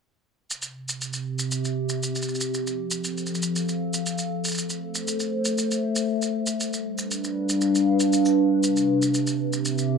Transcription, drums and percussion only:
0.51 shaker
0.62 shaker
0.89 shaker
1.01 shaker
1.13 shaker
1.39 shaker
1.52 shaker
1.65 shaker
1.89 shaker
2.03 shaker
2.15 shaker
2.22 shaker
2.28 shaker
2.35 shaker
2.41 shaker
2.54 shaker
2.67 shaker
2.91 shaker
3.04 shaker
3.17 shaker
3.26 shaker
3.35 shaker
3.43 shaker
3.56 shaker
3.69 shaker
3.94 shaker
4.06 shaker
4.18 shaker
4.45 shaker
4.48 shaker
4.51 shaker
4.54 shaker
4.58 shaker
4.70 shaker
4.95 shaker
5.08 shaker
5.20 shaker
5.45 shaker
5.58 shaker
5.71 shaker
5.96 shaker
6.22 shaker
6.47 shaker
6.60 shaker
6.73 shaker
6.98 shaker
7.11 shaker
7.24 shaker
7.49 shaker
7.61 shaker
7.75 shaker
8.00 shaker
8.13 shaker
8.25 shaker
8.63 shaker
8.77 shaker
9.02 shaker
9.14 shaker
9.27 shaker
9.53 shaker
9.65 shaker
9.78 shaker

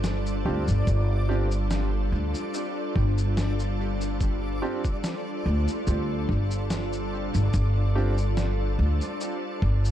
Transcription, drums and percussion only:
0.04 snare, cabasa
0.26 cabasa
0.68 cabasa
0.87 kick, cabasa
1.51 cabasa
1.71 snare, cabasa
2.35 cabasa
2.54 cabasa
2.96 kick
3.18 cabasa
3.37 snare, cabasa
3.59 cabasa
4.01 cabasa
4.21 kick, cabasa
4.84 kick, cabasa
5.04 snare, cabasa
5.68 cabasa
5.87 cabasa
6.29 kick
6.51 cabasa
6.70 snare, cabasa
6.93 cabasa
7.34 cabasa
7.53 kick, cabasa
8.18 cabasa
8.37 snare, cabasa
9.01 cabasa
9.21 cabasa
9.62 kick
9.85 cabasa

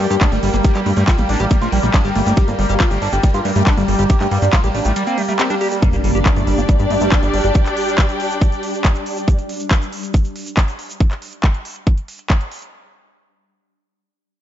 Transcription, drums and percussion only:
0.11 closed hi-hat, shaker
0.21 kick, clap, closed hi-hat, ride, shaker
0.32 closed hi-hat, shaker
0.43 open hi-hat
0.54 closed hi-hat, shaker
0.64 kick, closed hi-hat, ride, shaker
0.74 clap, closed hi-hat, shaker
0.86 open hi-hat
0.97 closed hi-hat, shaker
1.08 kick, clap, closed hi-hat, ride, shaker
1.18 closed hi-hat, shaker
1.29 open hi-hat
1.39 closed hi-hat, shaker
1.51 kick, closed hi-hat, ride, shaker
1.62 closed hi-hat, shaker
1.72 open hi-hat
1.83 closed hi-hat, shaker
1.94 kick, clap, closed hi-hat, ride, shaker
2.04 closed hi-hat, shaker
2.16 open hi-hat
2.26 closed hi-hat, shaker
2.36 kick, closed hi-hat, ride, shaker
2.48 closed hi-hat, shaker
2.59 open hi-hat
2.69 closed hi-hat, shaker
2.80 kick, clap, closed hi-hat, ride, shaker
2.91 closed hi-hat, shaker
3.02 open hi-hat
3.13 closed hi-hat, shaker
3.23 kick, closed hi-hat, ride, shaker
3.34 closed hi-hat, shaker
3.45 open hi-hat
3.56 closed hi-hat, shaker
3.66 kick, clap, closed hi-hat, ride, shaker
3.77 closed hi-hat, shaker
3.88 open hi-hat
3.99 closed hi-hat, shaker
4.10 kick, closed hi-hat, ride, shaker
4.20 clap, closed hi-hat, shaker
4.31 open hi-hat
4.42 closed hi-hat, shaker
4.53 kick, clap, closed hi-hat, ride, shaker
4.64 closed hi-hat, shaker
4.75 open hi-hat
4.84 closed hi-hat, shaker
4.96 closed hi-hat, ride, shaker
5.07 closed hi-hat, shaker
5.18 open hi-hat
5.29 closed hi-hat, shaker
5.39 clap, closed hi-hat, ride, shaker
5.50 closed hi-hat, shaker
5.61 open hi-hat
5.71 closed hi-hat, shaker
5.82 kick, closed hi-hat, shaker
5.93 closed hi-hat, shaker
6.04 open hi-hat
6.15 closed hi-hat, shaker
6.26 kick, clap, closed hi-hat, shaker
6.36 closed hi-hat, shaker
6.47 open hi-hat
6.58 closed hi-hat, shaker
6.69 kick, closed hi-hat, shaker
6.79 closed hi-hat, shaker
6.90 open hi-hat
7.00 closed hi-hat, shaker
7.12 kick, clap, closed hi-hat, shaker
7.23 closed hi-hat, shaker
7.34 open hi-hat
7.44 closed hi-hat, shaker
7.55 kick, closed hi-hat, shaker
7.66 clap, closed hi-hat, shaker
7.77 open hi-hat
7.88 closed hi-hat, shaker
7.98 kick, clap, closed hi-hat, shaker
8.09 closed hi-hat, shaker
8.20 open hi-hat
8.31 closed hi-hat, shaker
8.41 kick, closed hi-hat, shaker
8.52 closed hi-hat, shaker
8.63 open hi-hat
8.74 closed hi-hat, shaker
8.85 kick, clap, closed hi-hat, shaker
8.95 closed hi-hat, shaker
9.06 open hi-hat
9.17 closed hi-hat, shaker
9.28 kick, closed hi-hat, shaker
9.38 closed hi-hat, shaker
9.49 open hi-hat
9.60 closed hi-hat, shaker
9.71 kick, clap, closed hi-hat, shaker
9.82 closed hi-hat, shaker
9.93 open hi-hat
10.03 closed hi-hat, shaker
10.14 kick, closed hi-hat, shaker
10.25 closed hi-hat, shaker
10.36 open hi-hat
10.46 closed hi-hat, shaker
10.57 kick, clap, closed hi-hat, shaker
10.68 closed hi-hat, shaker
10.79 open hi-hat
10.90 closed hi-hat, shaker
11.00 kick, closed hi-hat
11.11 clap, closed hi-hat
11.22 open hi-hat
11.33 closed hi-hat
11.44 kick, clap, closed hi-hat
11.54 closed hi-hat
11.65 open hi-hat
11.76 closed hi-hat
11.87 kick, closed hi-hat
11.98 closed hi-hat
12.08 open hi-hat
12.19 closed hi-hat
12.30 kick, clap, closed hi-hat
12.41 closed hi-hat
12.52 open hi-hat
12.62 closed hi-hat

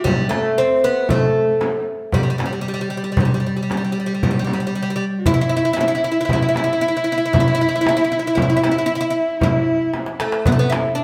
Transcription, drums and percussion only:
0.05 darbuka dum, frame drum
0.31 darbuka tek, frame drum
0.58 darbuka ka
0.70 darbuka ka
1.09 frame drum, darbuka dum
1.36 darbuka ka
1.49 darbuka ka
1.61 darbuka tek, frame drum
2.12 frame drum, darbuka dum
2.39 darbuka tek, frame drum
2.65 darbuka ka
3.17 darbuka dum, frame drum
3.44 darbuka ka
3.57 darbuka ka
3.70 darbuka tek, frame drum
3.97 darbuka ka
4.23 frame drum, darbuka dum
4.47 frame drum
4.75 darbuka ka
5.26 darbuka dum, frame drum
5.53 darbuka ka
5.65 darbuka ka
5.77 darbuka tek, frame drum
6.03 darbuka ka
6.29 darbuka dum, frame drum
6.55 darbuka tek, frame drum
6.83 darbuka ka
7.33 frame drum, darbuka dum
7.61 darbuka ka
7.74 darbuka ka
7.85 darbuka tek, frame drum
8.11 darbuka ka
8.37 frame drum, darbuka dum
8.64 darbuka tek, frame drum
8.90 darbuka ka
9.28 darbuka ka
9.41 darbuka dum, frame drum
9.94 darbuka tek, frame drum
10.06 darbuka ka
10.20 darbuka tek
10.32 darbuka ka
10.46 darbuka dum, frame drum
10.72 darbuka tek, frame drum
10.99 darbuka ka

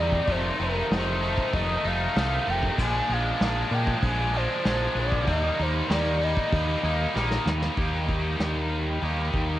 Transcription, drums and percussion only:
0.12 kick
0.27 kick, open hi-hat
0.59 open hi-hat
0.91 snare, open hi-hat
1.23 open hi-hat
1.38 kick
1.53 kick, open hi-hat
1.85 open hi-hat
2.16 snare, open hi-hat
2.47 open hi-hat
2.63 kick
2.78 kick, crash
3.09 open hi-hat
3.41 snare, open hi-hat
3.71 open hi-hat
3.87 kick
4.03 kick, open hi-hat
4.34 open hi-hat
4.65 snare, open hi-hat
4.96 open hi-hat
5.12 kick
5.27 kick, open hi-hat
5.59 open hi-hat
5.90 snare, open hi-hat
6.22 open hi-hat
6.37 kick
6.53 kick, open hi-hat
6.85 open hi-hat
7.17 snare
7.31 snare
7.47 snare
7.62 snare
7.77 kick, open hi-hat
8.09 kick
8.40 snare, open hi-hat
9.03 open hi-hat
9.34 kick

